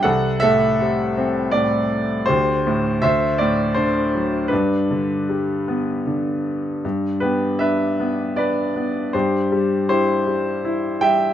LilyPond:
<<
  \new Staff \with { instrumentName = "Grand piano" } { \time 3/4 \key g \major \tempo 4 = 80 << { fis''8 e''4. d''4 | c''4 e''8 d''8 c''4 | b'2~ b'8 r8 | r8 b'8 e''4 d''4 |
c''4 c''4. g''8 | } \\ { a'8 a'4. r4 | g'4 c''4. r8 | d'2~ d'8 r8 | r8 g'8 b'4 b'4 |
g'4 g'4. e''8 | } >> }
  \new Staff \with { instrumentName = "Grand piano" } { \clef bass \time 3/4 \key g \major c,8 a,8 c8 c'8 a,4 | d,8 a,8 d,8 a,8 d8 fis8 | g,8 d8 g8 b8 d4 | g,8 b8 d'8 b8 d'8 b8 |
g,8 g8 e'8 g8 e'8 g8 | }
>>